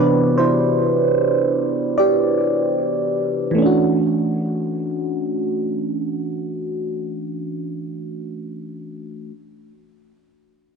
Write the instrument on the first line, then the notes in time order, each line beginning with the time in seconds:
fm electric piano
Already playing: E4 F#4 G4 B4 C5 C#5 D5
0.00 C3 E3 B3 D4
0.38 E4 C5
1.98 G4 D5
3.51 E3 A3
3.58 C#4 D4
3.66 F#4